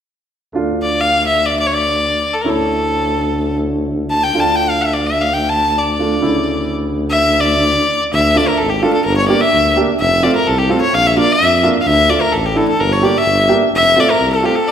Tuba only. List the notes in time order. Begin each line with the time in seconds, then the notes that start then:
0.54 D2
2.46 D2
4.35 D2
6.23 D2
8.13 D2
8.60 G#1
9.06 G1
9.53 D2
10.00 F1
10.46 C2
10.93 A#1
11.40 F2
11.86 D2
12.33 A1
12.80 G1
13.26 G1
13.73 F1
14.20 C2